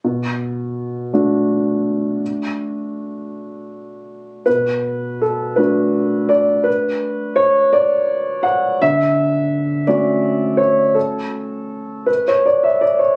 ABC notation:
X:1
M:6/8
L:1/16
Q:3/8=55
K:Bm
V:1 name="Upright piano"
z12 | z12 | B4 A2 B4 d2 | B4 c2 d4 f2 |
e6 d4 c2 | A6 B c d e d c |]
V:2 name="Upright piano"
B,,6 [A,DF]6- | [A,DF]12 | B,,6 [A,DF]6- | [A,DF]12 |
D,6 [A,CF]6- | [A,CF]12 |]